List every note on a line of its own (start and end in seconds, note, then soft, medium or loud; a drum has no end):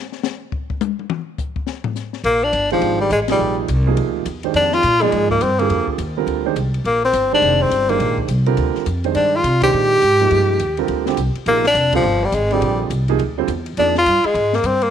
0.12 snare soft
0.23 snare loud
0.23 hi-hat pedal medium
0.52 kick medium
0.70 kick medium
0.81 hi-hat pedal medium
0.81 high tom loud
0.99 high tom soft
1.10 mid tom loud
1.38 kick medium
1.38 hi-hat pedal medium
1.56 kick medium
1.67 snare medium
1.84 floor tom loud
1.96 snare soft
1.96 hi-hat pedal medium
2.13 snare soft
2.24 2.52 A#1 medium
2.24 2.46 A#3 medium
2.24 ride medium
2.44 2.71 D4 medium
2.53 2.80 G1 medium
2.53 hi-hat pedal medium
2.53 ride medium
2.70 3.09 D#3 medium
2.70 2.98 F3 medium
2.70 3.09 G#3 medium
2.70 3.09 D4 medium
2.70 3.09 G4 medium
2.70 3.09 C5 medium
2.70 ride soft
2.81 3.09 G#1 medium
2.81 ride medium
3.01 3.10 G3 medium
3.10 3.38 A1 medium
3.10 3.20 G#3 medium
3.10 hi-hat pedal medium
3.10 ride medium
3.28 3.66 C3 medium
3.28 3.66 F3 medium
3.28 3.57 G3 medium
3.28 3.67 A#3 medium
3.28 3.67 D#4 medium
3.28 3.67 G#4 medium
3.28 snare medium
3.28 ride medium
3.39 3.67 A#1 medium
3.68 3.96 C2 loud
3.68 hi-hat pedal medium
3.68 ride medium
3.87 4.24 C3 medium
3.87 4.24 F3 medium
3.87 4.24 A#3 medium
3.87 4.24 D#4 medium
3.87 4.24 G#4 medium
3.97 4.25 D2 medium
3.97 ride medium
4.25 4.53 E2 medium
4.25 hi-hat pedal medium
4.25 ride medium
4.43 4.82 D#3 medium
4.43 4.82 G#3 medium
4.43 4.82 D4 medium
4.43 4.82 G4 medium
4.43 4.82 C5 medium
4.43 ride soft
4.54 4.82 F2 medium
4.54 4.76 D4 loud
4.54 ride medium
4.72 5.03 F4 loud
4.72 snare medium
4.83 5.11 A#2 medium
4.83 hi-hat pedal medium
4.83 ride medium
5.01 5.39 F3 medium
5.01 5.30 G#3 loud
5.01 5.39 A#3 medium
5.01 5.39 D#4 medium
5.01 5.40 G#4 medium
5.01 5.40 D5 medium
5.01 ride soft
5.12 5.40 G#2 medium
5.12 ride medium
5.30 5.44 A#3 medium
5.30 kick medium
5.41 5.69 G2 medium
5.41 5.61 C4 medium
5.41 hi-hat pedal medium
5.41 ride medium
5.59 5.97 D3 medium
5.59 5.88 A#3 medium
5.59 5.97 C4 medium
5.59 5.97 F4 medium
5.59 5.97 G4 medium
5.59 5.97 G#4 medium
5.59 ride soft
5.69 5.86 F2 medium
5.69 ride medium
5.87 muted upright bass stroke soft
5.87 kick soft
5.98 6.26 D#2 medium
5.98 hi-hat pedal medium
5.98 ride medium
6.17 6.44 D3 medium
6.17 6.44 G3 medium
6.17 6.44 C4 medium
6.17 6.44 F4 medium
6.17 6.44 A#4 medium
6.27 6.55 D2 medium
6.27 ride medium
6.46 6.55 D#3 medium
6.46 6.55 G#3 medium
6.46 6.55 D4 medium
6.46 6.56 G4 medium
6.46 6.56 C5 medium
6.56 6.84 C2 medium
6.56 hi-hat pedal medium
6.56 ride medium
6.74 ride soft
6.84 7.13 A#1 medium
6.84 7.03 A#3 medium
6.84 ride medium
7.05 7.30 C4 medium
7.13 7.41 G1 medium
7.13 hi-hat pedal medium
7.13 ride medium
7.33 7.70 D#3 medium
7.33 7.70 G#3 medium
7.33 7.70 D4 medium
7.33 7.64 D4 loud
7.33 7.70 G4 medium
7.33 7.70 C5 medium
7.42 7.70 F1 medium
7.42 ride medium
7.62 7.91 C4 medium
7.70 7.99 G1 medium
7.70 hi-hat pedal medium
7.70 ride medium
7.89 8.27 D#3 medium
7.89 8.27 G#3 medium
7.89 8.18 A#3 medium
7.89 8.27 D4 medium
7.89 8.27 G4 medium
7.89 8.27 C5 medium
7.89 ride soft
7.99 8.28 A#1 medium
7.99 ride medium
8.18 kick medium
8.28 8.56 C2 medium
8.28 hi-hat pedal medium
8.28 ride medium
8.46 8.84 D3 medium
8.46 8.84 G3 medium
8.46 8.84 C4 medium
8.46 8.85 F4 medium
8.46 8.84 A#4 medium
8.46 ride soft
8.57 8.74 D2 medium
8.57 ride medium
8.75 muted upright bass stroke soft
8.75 snare soft
8.86 9.14 F2 medium
8.86 hi-hat pedal medium
8.86 ride medium
9.04 9.42 D#3 medium
9.04 9.42 G#3 medium
9.04 9.42 D4 medium
9.04 9.42 G4 soft
9.04 9.42 C5 medium
9.04 ride soft
9.15 9.43 G2 medium
9.15 9.37 D4 medium
9.15 ride medium
9.36 9.63 F4 medium
9.44 9.72 C3 medium
9.44 hi-hat pedal medium
9.44 ride medium
9.62 10.00 D#3 medium
9.62 10.00 G#3 medium
9.62 10.00 D4 medium
9.62 11.14 G4 loud
9.62 10.00 G4 medium
9.62 10.01 C5 medium
9.62 kick medium
9.62 ride medium
9.74 10.01 A#2 medium
10.02 10.30 G#2 medium
10.02 hi-hat pedal medium
10.02 ride medium
10.20 10.58 C3 medium
10.20 10.58 F3 medium
10.20 10.58 G#3 medium
10.20 10.58 A#3 medium
10.20 10.58 D#4 medium
10.20 ride soft
10.31 10.59 G2 medium
10.31 ride medium
10.59 10.88 D#2 medium
10.59 hi-hat pedal medium
10.59 ride medium
10.77 11.05 D3 medium
10.77 11.05 G3 medium
10.77 11.05 C4 medium
10.77 11.05 F4 medium
10.77 11.05 A#4 medium
10.77 ride soft
10.88 11.16 D2 medium
10.88 ride medium
11.06 11.17 D3 medium
11.06 11.17 G3 medium
11.06 11.17 C4 medium
11.06 11.17 F4 medium
11.06 11.17 G4 medium
11.06 snare medium
11.17 11.34 C2 medium
11.17 hi-hat pedal soft
11.17 ride medium
11.35 muted upright bass stroke soft
11.35 ride soft
11.46 11.74 A#1 medium
11.46 11.62 C3 medium
11.46 11.63 F3 medium
11.46 11.63 A#3 medium
11.46 11.65 A#3 loud
11.46 11.63 D#4 medium
11.46 11.63 G#4 medium
11.46 ride medium
11.64 11.92 D4 loud
11.64 snare medium
11.74 12.03 F1 medium
11.74 hi-hat pedal medium
11.74 ride medium
11.93 12.03 D3 medium
11.93 12.26 F3 medium
11.93 12.04 G3 medium
11.93 12.03 C4 medium
11.93 12.04 F4 medium
11.93 12.04 G4 medium
11.93 kick medium
11.93 ride medium
12.03 12.32 G1 medium
12.25 12.36 G3 medium
12.32 12.60 G#1 medium
12.32 12.55 G#3 medium
12.32 hi-hat pedal medium
12.32 ride medium
12.51 12.89 D3 medium
12.51 12.81 G3 medium
12.51 12.89 C4 medium
12.51 12.89 F4 medium
12.51 12.89 G4 medium
12.51 12.89 G#4 medium
12.51 ride soft
12.61 12.89 A#1 medium
12.61 ride medium
12.90 13.18 C2 medium
12.90 hi-hat pedal medium
12.90 ride medium
13.08 13.19 C3 medium
13.08 13.19 F3 medium
13.08 13.19 A#3 medium
13.08 13.19 D#4 medium
13.08 13.19 G#4 medium
13.08 ride soft
13.19 13.47 D2 medium
13.19 ride medium
13.38 13.48 D3 medium
13.38 13.48 G3 medium
13.38 13.48 C4 medium
13.38 13.48 F4 medium
13.38 13.48 C5 medium
13.48 13.76 E2 medium
13.48 hi-hat pedal soft
13.48 ride medium
13.66 ride soft
13.77 14.05 F2 medium
13.77 13.94 F3 medium
13.77 13.94 A#3 medium
13.77 13.96 D4 loud
13.77 13.94 D#4 medium
13.77 13.94 G#4 medium
13.77 13.95 D5 medium
13.77 ride medium
13.95 14.27 F4 loud
13.95 snare medium
14.06 14.23 G2 medium
14.06 hi-hat pedal medium
14.06 ride medium
14.24 14.57 G#3 medium
14.24 muted upright bass stroke soft
14.24 ride soft
14.34 14.62 G#2 loud
14.34 ride medium
14.53 14.68 A#3 medium
14.53 snare medium
14.63 14.90 G2 medium
14.63 14.84 C4 medium
14.63 hi-hat pedal medium
14.63 ride medium
14.82 14.90 A#3 medium
14.82 ride soft